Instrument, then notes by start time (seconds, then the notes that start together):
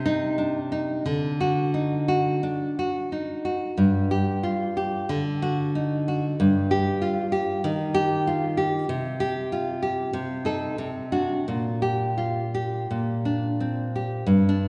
nylon-string guitar
Already playing: C3
0.06 D#4
0.38 D4
0.72 D#4
1.06 D3
1.41 F#4
1.74 D#4
2.08 F#4
2.43 D4
2.79 F#4
3.12 D#4
3.45 F#4
3.78 G2
4.11 G4
4.43 F4
4.77 G4
5.09 D3
5.42 F#4
5.75 D#4
6.08 F#4
6.40 G2
6.71 G4
7.02 F4
7.32 G4
7.64 D#3
7.94 G4
8.27 F4
8.57 G4
8.89 C3
9.20 G4
9.52 F4
9.83 G4
10.13 C3
10.45 D#4 A4
10.78 C3
11.12 D4 F#4
11.48 A#2
11.82 G4
12.18 F4
12.55 G4
12.91 A#2
13.25 D4
13.60 C4
13.96 G4
14.27 G2
14.49 D4